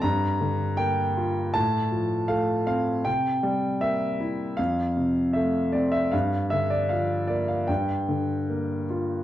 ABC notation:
X:1
M:4/4
L:1/16
Q:1/4=78
K:Gdor
V:1 name="Grand piano"
b4 g4 a4 f2 f2 | g4 e4 f4 e2 d e | f2 e d f2 d f g6 z2 |]
V:2 name="Grand piano" clef=bass
G,,2 D,2 B,2 F2 A,,2 F,2 A,2 C2 | C,2 G,2 B,2 E2 F,,2 C,2 A,2 C2 | G,,2 D,2 F,2 B,2 G,,2 D,2 B,2 F2 |]